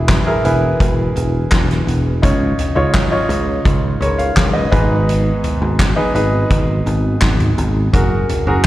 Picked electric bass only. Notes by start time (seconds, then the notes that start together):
Already playing: E1
0.45 E1
0.80 E1
1.16 E1
1.52 E1
1.87 E1
2.23 C#2
2.76 C#2
3.29 C#2
3.65 C#2
4.01 C#2
4.37 C#2
4.72 G#1
5.62 G#1
6.15 G#1
6.51 G#1
6.86 G#1
7.22 G#1
7.58 G#1
7.94 F#1
8.47 F#1